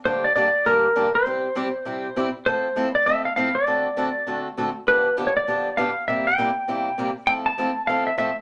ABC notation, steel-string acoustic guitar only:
X:1
M:4/4
L:1/8
Q:"Swing" 1/4=200
K:F
V:1 name="Steel-string acoustic guitar"
[G,,D,G,B,DG] z [G,,D,G,B,DG] z [G,,D,G,B,DG] z [G,,D,G,B,DG] z | [C,G,CEG] z [C,G,CEG] z [C,G,CEG] z [C,G,CEG] z | [F,A,CEA] z [F,A,CEA] z [F,A,CEA] z [F,A,CEA] z | [D,A,C^FA] z [D,A,CFA] z [D,A,CFA] z [D,A,CFA] z |
[D,F,=B,DG] z [D,F,B,DG] z [D,F,B,DG] z [D,F,B,DG] z | [C,G,B,EG] z [C,G,B,EG] z [C,G,B,EG] z [C,G,B,EG] z | [F,A,CEA] z [F,A,CEA] z [F,A,CEA] z [F,A,CEA] z |]